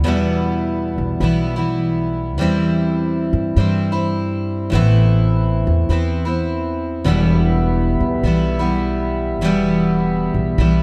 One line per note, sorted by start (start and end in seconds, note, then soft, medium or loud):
0.03 0.94 E2 medium
0.03 1.22 E2 medium
0.03 1.22 B2 medium
0.03 1.20 E3 medium
0.03 1.21 G3 medium
0.08 1.22 B3 medium
0.08 1.23 E4 medium
0.98 1.20 B1 medium
1.20 2.39 B1 medium
1.20 1.57 E3 medium
1.20 1.57 G3 medium
1.20 1.55 B3 medium
1.20 1.55 E4 medium
1.56 2.37 E3 soft
1.56 2.38 G3 soft
1.56 2.39 B3 soft
1.56 2.42 E4 soft
2.38 3.29 E2 medium
2.38 3.56 E3 medium
2.38 3.56 G3 medium
2.38 3.58 C4 medium
2.42 3.59 E4 medium
3.33 3.55 G2 medium
3.56 4.74 G2 medium
3.56 3.92 E3 medium
3.56 3.92 G3 medium
3.56 3.92 C4 medium
3.56 3.91 E4 medium
3.92 4.73 G3 soft
3.92 4.73 C4 soft
3.92 4.75 E4 medium
4.70 5.63 A1 medium
4.70 5.89 A2 medium
4.70 5.89 E3 medium
4.70 5.90 B3 medium
4.74 5.90 C4 medium
4.74 5.92 E4 medium
5.67 5.88 E2 medium
5.89 7.07 E2 medium
5.89 6.25 E3 medium
5.89 6.26 B3 medium
5.89 6.25 C4 medium
5.89 6.24 E4 medium
6.25 7.07 B3 soft
6.25 7.07 C4 soft
6.25 7.09 E4 soft
7.04 7.96 E1 medium
7.04 8.23 E2 medium
7.04 8.23 B2 medium
7.04 8.23 E3 medium
7.04 8.25 G3 medium
7.04 8.25 B3 medium
7.04 10.83 G4 medium
7.04 10.83 E5 medium
7.04 10.83 B5 medium
7.09 8.27 E4 medium
8.00 8.23 B1 medium
8.23 9.42 B1 medium
8.23 8.60 E3 medium
8.23 8.60 G3 medium
8.23 8.59 B3 medium
8.23 8.58 E4 medium
8.59 9.42 E3 soft
8.59 9.44 G3 soft
8.59 9.41 B3 soft
8.59 9.45 E4 soft
9.41 10.32 E1 medium
9.41 10.58 E2 medium
9.41 10.59 B2 medium
9.41 10.58 E3 medium
9.41 10.59 G3 medium
9.41 10.59 B3 medium
9.45 10.60 E4 medium
10.34 10.57 B1 medium
10.58 10.83 B1 medium
10.58 10.83 E3 medium
10.58 10.83 G3 medium
10.58 10.83 B3 medium
10.58 10.83 E4 medium